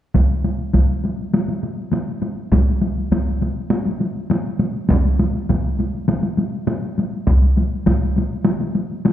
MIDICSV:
0, 0, Header, 1, 2, 480
1, 0, Start_track
1, 0, Tempo, 592885
1, 121, Time_signature, 4, 2, 24, 8
1, 7389, End_track
2, 0, Start_track
2, 0, Title_t, "Taiko and cinematic ensemble drums"
2, 116, Note_on_c, 9, 41, 66
2, 118, Note_on_c, 9, 48, 50
2, 197, Note_off_c, 9, 41, 0
2, 199, Note_off_c, 9, 48, 0
2, 239, Note_on_c, 9, 48, 15
2, 320, Note_off_c, 9, 48, 0
2, 360, Note_on_c, 9, 48, 43
2, 441, Note_off_c, 9, 48, 0
2, 474, Note_on_c, 9, 48, 16
2, 555, Note_off_c, 9, 48, 0
2, 595, Note_on_c, 9, 48, 49
2, 599, Note_on_c, 9, 41, 53
2, 676, Note_off_c, 9, 48, 0
2, 680, Note_off_c, 9, 41, 0
2, 723, Note_on_c, 9, 48, 16
2, 804, Note_off_c, 9, 48, 0
2, 840, Note_on_c, 9, 48, 39
2, 921, Note_off_c, 9, 48, 0
2, 963, Note_on_c, 9, 48, 18
2, 1044, Note_off_c, 9, 48, 0
2, 1081, Note_on_c, 9, 48, 55
2, 1162, Note_off_c, 9, 48, 0
2, 1200, Note_on_c, 9, 48, 36
2, 1280, Note_off_c, 9, 48, 0
2, 1320, Note_on_c, 9, 48, 42
2, 1401, Note_off_c, 9, 48, 0
2, 1437, Note_on_c, 9, 48, 16
2, 1518, Note_off_c, 9, 48, 0
2, 1551, Note_on_c, 9, 48, 52
2, 1632, Note_off_c, 9, 48, 0
2, 1676, Note_on_c, 9, 48, 15
2, 1757, Note_off_c, 9, 48, 0
2, 1795, Note_on_c, 9, 48, 46
2, 1876, Note_off_c, 9, 48, 0
2, 1921, Note_on_c, 9, 48, 17
2, 2002, Note_off_c, 9, 48, 0
2, 2037, Note_on_c, 9, 41, 76
2, 2042, Note_on_c, 9, 48, 56
2, 2118, Note_off_c, 9, 41, 0
2, 2123, Note_off_c, 9, 48, 0
2, 2160, Note_on_c, 9, 48, 16
2, 2241, Note_off_c, 9, 48, 0
2, 2283, Note_on_c, 9, 48, 46
2, 2364, Note_off_c, 9, 48, 0
2, 2412, Note_on_c, 9, 48, 18
2, 2493, Note_off_c, 9, 48, 0
2, 2522, Note_on_c, 9, 41, 57
2, 2525, Note_on_c, 9, 48, 55
2, 2603, Note_off_c, 9, 41, 0
2, 2606, Note_off_c, 9, 48, 0
2, 2765, Note_on_c, 9, 48, 42
2, 2846, Note_off_c, 9, 48, 0
2, 2999, Note_on_c, 9, 48, 57
2, 3080, Note_off_c, 9, 48, 0
2, 3120, Note_on_c, 9, 48, 38
2, 3201, Note_off_c, 9, 48, 0
2, 3241, Note_on_c, 9, 48, 42
2, 3322, Note_off_c, 9, 48, 0
2, 3361, Note_on_c, 9, 48, 17
2, 3442, Note_off_c, 9, 48, 0
2, 3480, Note_on_c, 9, 48, 57
2, 3561, Note_off_c, 9, 48, 0
2, 3603, Note_on_c, 9, 48, 17
2, 3684, Note_off_c, 9, 48, 0
2, 3719, Note_on_c, 9, 48, 46
2, 3800, Note_off_c, 9, 48, 0
2, 3842, Note_on_c, 9, 48, 17
2, 3923, Note_off_c, 9, 48, 0
2, 3956, Note_on_c, 9, 48, 57
2, 3968, Note_on_c, 9, 41, 87
2, 4037, Note_off_c, 9, 48, 0
2, 4049, Note_off_c, 9, 41, 0
2, 4085, Note_on_c, 9, 48, 16
2, 4166, Note_off_c, 9, 48, 0
2, 4206, Note_on_c, 9, 48, 51
2, 4287, Note_off_c, 9, 48, 0
2, 4328, Note_on_c, 9, 48, 18
2, 4409, Note_off_c, 9, 48, 0
2, 4447, Note_on_c, 9, 41, 56
2, 4448, Note_on_c, 9, 48, 54
2, 4528, Note_off_c, 9, 41, 0
2, 4529, Note_off_c, 9, 48, 0
2, 4567, Note_on_c, 9, 48, 19
2, 4648, Note_off_c, 9, 48, 0
2, 4687, Note_on_c, 9, 48, 42
2, 4768, Note_off_c, 9, 48, 0
2, 4810, Note_on_c, 9, 48, 17
2, 4891, Note_off_c, 9, 48, 0
2, 4922, Note_on_c, 9, 48, 58
2, 5003, Note_off_c, 9, 48, 0
2, 5039, Note_on_c, 9, 48, 41
2, 5120, Note_off_c, 9, 48, 0
2, 5160, Note_on_c, 9, 48, 43
2, 5241, Note_off_c, 9, 48, 0
2, 5285, Note_on_c, 9, 48, 18
2, 5365, Note_off_c, 9, 48, 0
2, 5401, Note_on_c, 9, 48, 57
2, 5482, Note_off_c, 9, 48, 0
2, 5523, Note_on_c, 9, 48, 16
2, 5604, Note_off_c, 9, 48, 0
2, 5650, Note_on_c, 9, 48, 44
2, 5731, Note_off_c, 9, 48, 0
2, 5769, Note_on_c, 9, 48, 16
2, 5850, Note_off_c, 9, 48, 0
2, 5884, Note_on_c, 9, 48, 46
2, 5886, Note_on_c, 9, 41, 72
2, 5965, Note_off_c, 9, 48, 0
2, 5967, Note_off_c, 9, 41, 0
2, 6009, Note_on_c, 9, 48, 15
2, 6090, Note_off_c, 9, 48, 0
2, 6129, Note_on_c, 9, 48, 45
2, 6210, Note_off_c, 9, 48, 0
2, 6365, Note_on_c, 9, 41, 58
2, 6366, Note_on_c, 9, 48, 58
2, 6446, Note_off_c, 9, 41, 0
2, 6447, Note_off_c, 9, 48, 0
2, 6490, Note_on_c, 9, 48, 19
2, 6571, Note_off_c, 9, 48, 0
2, 6609, Note_on_c, 9, 48, 45
2, 6690, Note_off_c, 9, 48, 0
2, 6729, Note_on_c, 9, 48, 17
2, 6810, Note_off_c, 9, 48, 0
2, 6842, Note_on_c, 9, 48, 56
2, 6923, Note_off_c, 9, 48, 0
2, 6962, Note_on_c, 9, 48, 41
2, 7043, Note_off_c, 9, 48, 0
2, 7081, Note_on_c, 9, 48, 39
2, 7161, Note_off_c, 9, 48, 0
2, 7203, Note_on_c, 9, 48, 17
2, 7284, Note_off_c, 9, 48, 0
2, 7327, Note_on_c, 9, 48, 57
2, 7389, Note_off_c, 9, 48, 0
2, 7389, End_track
0, 0, End_of_file